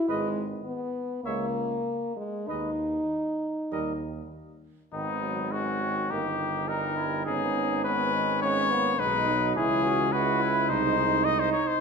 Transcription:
0.08 tuba G#1, french horn G#3, trombone G#3, flugelhorn B4, trumpet D#5
0.65 french horn B3
1.24 tuba C#2, trombone G#3, french horn A#3, flugelhorn C#5, trumpet E5
2.17 french horn G#3
2.47 tuba D#2, trombone G#3, french horn D#4, flugelhorn B4, trumpet D#5
3.72 tuba D#2, trombone G3, flugelhorn A#4, trumpet D#5
4.93 tuba G#1, french horn D#3, flugelhorn B3, trumpet D#4
5.22 french horn F#3
5.52 french horn G#3, flugelhorn C#4, trumpet F#4
5.81 french horn D#3
6.10 tuba G1, french horn D#3, trombone A#3, flugelhorn D#4, trumpet G4
6.40 trombone D#4
6.68 french horn G3, flugelhorn D#4, trumpet A#4
6.97 flugelhorn E4
7.25 tuba G#1, french horn B3, trombone C#4, flugelhorn D#4, trumpet G#4
7.84 french horn G#3, trombone B3, flugelhorn C#4, trumpet B4
8.15 trombone D#4
8.42 french horn G#3, flugelhorn B3, trombone C#4, trumpet C#5
8.71 french horn A#3, trombone B3
8.98 tuba B1, french horn G#3, flugelhorn D#4, trombone D#4, trumpet B4
9.28 french horn F#3, trombone D#4
9.55 tuba C#2, french horn E3, flugelhorn C#4, trombone E4, trumpet G#4
9.84 trombone F#4
10.12 french horn G#3, trombone E4, flugelhorn F#4, trumpet B4
10.41 flugelhorn E4
10.69 tuba C2, french horn G#3, trombone D#4, flugelhorn D#4, trumpet C5
10.97 trombone D#4
11.25 flugelhorn D#4, trumpet D#5
11.40 trumpet C5
11.53 trumpet C#5
11.67 trumpet C5

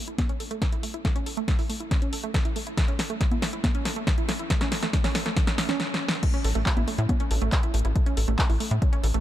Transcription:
0.08 synth arpeggio sound E4, closed hi-hat
0.18 synth arpeggio sound C#4, kick, snare, closed hi-hat, high conga
0.29 synth arpeggio sound C#4, closed hi-hat
0.40 synth arpeggio sound A4, open hi-hat
0.51 synth arpeggio sound A3, closed hi-hat
0.62 synth arpeggio sound A4, kick, snare, closed hi-hat
0.72 synth arpeggio sound E4, closed hi-hat
0.83 synth arpeggio sound A3, open hi-hat
0.94 synth arpeggio sound E4, closed hi-hat
1.05 synth arpeggio sound A3, kick, snare, closed hi-hat
1.16 synth arpeggio sound C#4, closed hi-hat
1.26 synth arpeggio sound A4, open hi-hat
1.37 synth arpeggio sound A3
1.48 synth arpeggio sound A3, kick, snare, closed hi-hat
1.59 synth arpeggio sound E4, open hi-hat
1.70 synth arpeggio sound A3, open hi-hat
1.80 synth arpeggio sound E4, closed hi-hat
1.91 synth arpeggio sound C#4, kick, snare, closed hi-hat
2.02 synth arpeggio sound C#4, closed hi-hat
2.13 synth arpeggio sound A4, open hi-hat
2.24 synth arpeggio sound A3, closed hi-hat
2.34 synth arpeggio sound A4, kick, snare, closed hi-hat
2.45 synth arpeggio sound E4, closed hi-hat
2.56 synth arpeggio sound A3, open hi-hat
2.67 synth arpeggio sound E4, closed hi-hat
2.77 synth arpeggio sound A3, kick, snare, closed hi-hat
2.88 synth arpeggio sound C#4, closed hi-hat
2.99 synth arpeggio sound A4, snare, open hi-hat
3.10 synth arpeggio sound A3, closed hi-hat
3.21 synth arpeggio sound A3, kick, snare, closed hi-hat
3.31 synth arpeggio sound E4, closed hi-hat, high conga
3.42 synth arpeggio sound A3, snare, open hi-hat
3.53 synth arpeggio sound E4, closed hi-hat
3.64 synth arpeggio sound A3, kick, snare, closed hi-hat, high conga
3.75 synth arpeggio sound C#4, closed hi-hat
3.85 synth arpeggio sound A4, snare, open hi-hat
3.96 synth arpeggio sound A3, closed hi-hat
4.07 synth arpeggio sound A3, kick, snare, closed hi-hat
4.18 synth arpeggio sound E4, closed hi-hat
4.29 synth arpeggio sound A3, snare, open hi-hat
4.39 synth arpeggio sound E4, closed hi-hat
4.50 synth arpeggio sound A3, kick, snare, closed hi-hat
4.61 synth arpeggio sound C#4, snare, closed hi-hat
4.72 synth arpeggio sound A4, snare, open hi-hat
4.83 synth arpeggio sound A3, snare, closed hi-hat
4.93 synth arpeggio sound A3, kick, snare, closed hi-hat
5.04 synth arpeggio sound C#4, snare, open hi-hat
5.15 synth arpeggio sound A4, snare, open hi-hat
5.26 synth arpeggio sound A3, snare, closed hi-hat
5.37 synth arpeggio sound A3, kick, snare, closed hi-hat
5.47 synth arpeggio sound C#4, snare, closed hi-hat
5.58 synth arpeggio sound A3, snare, open hi-hat
5.69 synth arpeggio sound C#4, snare, closed hi-hat
5.80 snare
5.94 snare
6.08 snare
6.23 synth arpeggio sound A3, kick, closed hi-hat, crash
6.34 synth arpeggio sound C#4, closed hi-hat
6.44 analog synth bass A1, synth arpeggio sound A4, open hi-hat
6.55 analog synth bass A1, synth arpeggio sound A3, closed hi-hat
6.66 synth arpeggio sound A3, kick, clap, closed hi-hat
6.77 analog synth bass A1, synth arpeggio sound E4, closed hi-hat, high conga
6.88 synth arpeggio sound A3, open hi-hat
6.98 analog synth bass A2, synth arpeggio sound E4, closed hi-hat
7.09 synth arpeggio sound C#4, kick, closed hi-hat, high conga
7.20 synth arpeggio sound C#4, closed hi-hat
7.31 analog synth bass A1, synth arpeggio sound A4, open hi-hat
7.42 analog synth bass A1, synth arpeggio sound A3, closed hi-hat
7.52 synth arpeggio sound A4, kick, clap, closed hi-hat
7.63 synth arpeggio sound E4, closed hi-hat
7.74 analog synth bass A1, synth arpeggio sound A3, open hi-hat
7.79 closed hi-hat
7.85 analog synth bass A1, synth arpeggio sound E4, closed hi-hat
7.96 synth arpeggio sound A3, kick, closed hi-hat
8.06 synth arpeggio sound C#4, closed hi-hat
8.17 analog synth bass A1, synth arpeggio sound A4, open hi-hat
8.28 analog synth bass A1, synth arpeggio sound A3, closed hi-hat
8.39 synth arpeggio sound A3, kick, clap, closed hi-hat
8.50 analog synth bass A1, synth arpeggio sound E4, open hi-hat
8.60 synth arpeggio sound A3, open hi-hat
8.71 analog synth bass A2, synth arpeggio sound E4, closed hi-hat
8.82 synth arpeggio sound C#4, kick, closed hi-hat
8.93 synth arpeggio sound C#4, closed hi-hat
9.03 analog synth bass A1, synth arpeggio sound A4, open hi-hat
9.14 analog synth bass A1, synth arpeggio sound A3, closed hi-hat

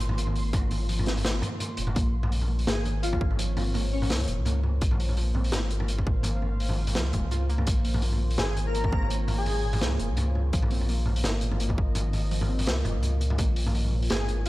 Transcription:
Already playing: sub bass G#1, analog synth pad A#3 F4 C5 C#5, synth texture C6
0.00 synth pluck A#2, closed hi-hat
0.09 mid tom
0.18 synth pluck A#3, closed hi-hat
0.27 mid tom
0.36 open hi-hat
0.53 kick, closed hi-hat, mid tom
0.71 mid tom, open hi-hat
0.89 synth pluck F3, open hi-hat
0.99 mid tom
1.06 synth pluck C4, snare, closed hi-hat
1.17 mid tom, open hi-hat
1.24 synth pluck A#3, snare, closed hi-hat
1.42 closed hi-hat, mid tom
1.60 closed hi-hat, mid tom
1.77 sub bass F1, synth pluck A#2, closed hi-hat
1.87 mid tom
1.95 sub bass A#1, analog synth pad A#3, synth pluck A#3, kick, closed hi-hat, mid tom
2.23 analog synth pad F4, mid tom
2.27 analog synth pad C#5
2.32 analog synth pad C5, open hi-hat
2.42 mid tom
2.50 synth pluck A#2
2.59 open hi-hat
2.67 sub bass G#1, synth pluck A#3, digital synth lead G#4, snare, closed hi-hat, mid tom
2.77 digital synth lead G#4
2.85 closed hi-hat, mid tom
3.03 digital synth lead F4, closed hi-hat
3.12 digital synth lead F4, kick, mid tom
3.21 kick
3.31 mid tom
3.39 synth pluck F3, closed hi-hat
3.57 synth pluck C4, mid tom, open hi-hat
3.74 synth pluck A#3, mid tom, open hi-hat
3.92 digital synth lead C#4
4.02 digital synth lead C#4, mid tom, open hi-hat
4.10 sub bass C#2, snare, closed hi-hat
4.15 closed hi-hat
4.19 closed hi-hat, mid tom
4.23 closed hi-hat
4.28 sub bass F1, synth pluck A#2, closed hi-hat
4.38 sub bass C#2
4.45 synth pluck A#3, closed hi-hat, mid tom
4.63 mid tom
4.81 sub bass A#1, kick, closed hi-hat
4.91 mid tom
5.00 open hi-hat
5.09 analog synth pad F5, mid tom
5.17 synth pluck F3, open hi-hat
5.35 synth pluck C4, mid tom
5.44 open hi-hat
5.52 sub bass G#1, synth pluck A#3, snare, closed hi-hat, mid tom
5.71 closed hi-hat
5.80 mid tom
5.88 closed hi-hat
5.98 kick, mid tom
6.07 synth pluck A#2, kick
6.23 synth pluck A#3, closed hi-hat, mid tom
6.42 mid tom
6.60 open hi-hat
6.69 mid tom
6.87 mid tom, open hi-hat
6.95 sub bass C#2, synth pluck F3, snare, closed hi-hat
7.13 sub bass F1, synth pluck G#3, kick, closed hi-hat, mid tom
7.23 sub bass C#2
7.31 synth pluck F4, closed hi-hat, mid tom
7.49 synth pluck A#3, closed hi-hat
7.58 mid tom
7.67 sub bass A#1, kick, closed hi-hat, mid tom
7.85 synth pluck A#2, open hi-hat
7.94 analog synth pad C#5, mid tom
8.02 synth pluck A#3, open hi-hat
8.12 mid tom
8.31 open hi-hat
8.38 sub bass G#1, digital synth lead G#4, snare, closed hi-hat, mid tom
8.48 digital synth lead G#4
8.56 closed hi-hat, mid tom
8.67 digital synth lead A#4
8.75 synth pluck F3, closed hi-hat
8.84 digital synth lead A#4, kick, mid tom
8.92 synth pluck C4, kick
9.02 mid tom
9.10 synth pluck A#3, closed hi-hat
9.28 mid tom, open hi-hat
9.38 digital synth lead G#4
9.46 mid tom, open hi-hat
9.64 synth pluck A#2
9.73 mid tom, open hi-hat
9.81 sub bass C#2, synth pluck A#3, snare, closed hi-hat
9.91 mid tom
9.99 sub bass F1, closed hi-hat
10.09 sub bass C#2
10.17 closed hi-hat, mid tom
10.35 mid tom
10.53 sub bass A#1, synth pluck F3, kick, closed hi-hat
10.62 mid tom
10.71 synth pluck C4, open hi-hat
10.81 analog synth pad D#5, mid tom
10.89 synth pluck A#3, open hi-hat
11.06 mid tom
11.16 open hi-hat
11.24 sub bass G#1, snare, closed hi-hat, mid tom
11.41 synth pluck A#2, closed hi-hat
11.52 mid tom
11.60 synth pluck A#3, closed hi-hat
11.69 kick, mid tom
11.78 kick
11.95 closed hi-hat, mid tom
12.13 mid tom, open hi-hat
12.31 synth pluck F3, open hi-hat
12.41 mid tom
12.49 synth pluck C4
12.59 mid tom, open hi-hat
12.67 sub bass C#2, synth pluck A#3, snare, closed hi-hat
12.85 sub bass F1, closed hi-hat, mid tom
12.94 sub bass C#2
13.03 closed hi-hat, mid tom
13.21 synth pluck A#2, closed hi-hat
13.30 mid tom
13.38 sub bass A#1, synth pluck A#3, kick, closed hi-hat, mid tom
13.56 open hi-hat
13.67 analog synth pad C#5, mid tom
13.75 open hi-hat
13.84 mid tom
13.92 synth pluck A#2
14.02 open hi-hat
14.10 sub bass G#1, synth pluck A#3, digital synth lead G#4, snare, closed hi-hat, mid tom
14.20 digital synth lead G#4
14.28 closed hi-hat, mid tom
14.46 closed hi-hat

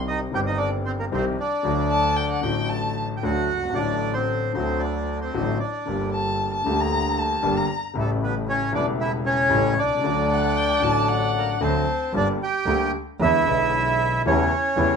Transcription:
Already playing: grand piano C2 C3 D#3 G3 C4 G4, double bass C2
0.08 bandoneon D#4 D#5
0.31 double bass G1, grand piano G1 G2 D#3 G3 C4, bandoneon G4 G5
0.35 grand piano G4
0.47 bandoneon D#4 D#5
0.57 bandoneon D4 D5
0.86 bandoneon C4 C5
0.99 bandoneon A#3 A#4
1.12 double bass C2, grand piano C2 C3 D#3 G3 C4 G4, bandoneon C4 C5
1.40 bandoneon D4 D5
1.63 grand piano D2 D3 F#3 A3 F#4, double bass D2
1.91 violin A5
2.17 violin G5
2.30 violin F#5
2.41 grand piano A1 A2 D3 F#3 A3, double bass A1, violin G5
2.45 grand piano F#4
2.69 violin A5
3.17 bandoneon G5
3.23 double bass D2, grand piano D2 D3 F#3 A3 F#4, bandoneon F#4 F#5
3.50 double bass G1
3.56 grand piano F#1
3.63 grand piano G1
3.69 grand piano G#1 D3
3.74 grand piano A1 A2 F#3 A3 F#4, double bass A1, bandoneon D4 D5
4.14 bandoneon C4 C5
4.53 grand piano D2 D3 F#3 A3 F#4, double bass D2, bandoneon C5
4.58 bandoneon C4
4.79 bandoneon D5
4.83 bandoneon D4
5.22 bandoneon C4 C5
5.34 grand piano A1 A2 D3 F#3 A3 F#4, double bass A1
5.60 bandoneon D4 D5
5.86 double bass G1, grand piano G1 G2 D3 G3 A#3
5.90 grand piano G4
6.12 violin A5
6.53 violin A5
6.66 double bass D2, grand piano D2 D3 G3 A#3 G4
6.80 violin A#5
7.18 violin A5
7.43 grand piano G1 G2 D3 G3 A#3 G4, double bass G1
7.57 violin A#5
7.93 double bass A1, grand piano A1 A2 C#3 G3 A3 E4
7.98 bandoneon A3 A4
8.23 bandoneon B3 B4
8.49 bandoneon C#4 C#5
8.71 grand piano E1 E2 C#3 G3 A3 E4, double bass E1, bandoneon D4 D5
9.00 bandoneon E4 E5
9.26 bandoneon C#4 C#5
9.50 grand piano A1 A2 C#3 G3 A3 E4, double bass A1
9.77 double bass C2, bandoneon D4 D5
9.83 grand piano B1
9.90 grand piano C2
9.97 grand piano C#2 D3
10.03 double bass D2, grand piano D2 D3 F#3 A3 F#4
10.31 violin F#5
10.57 violin G5
10.80 double bass A1, grand piano A1 A2 D3 F#3 A3, violin A5
10.84 grand piano F#4
11.08 violin F#5
11.38 bandoneon A#3 A#4
11.60 double bass D2, grand piano D2 D3 F#3 A3 F#4, bandoneon C4 C5, violin A5
12.13 double bass G1, grand piano G1 G2 D3 G3 A#3 G4, bandoneon D4 D5
12.43 bandoneon G4 G5
12.66 double bass D2, grand piano D2 D3 G3 A#3 G4
13.20 double bass E2, grand piano E2 D3 E3 G#3 B3 E4, bandoneon E4 E5
13.45 double bass B1, grand piano B1 B2 D3 G#3 B3
13.50 grand piano E4
14.25 double bass E2, grand piano E2 C#3 E3 G3 A3 E4, bandoneon C#4 C#5
14.77 double bass E2, grand piano E2 C#3 E3 G3 A3 E4

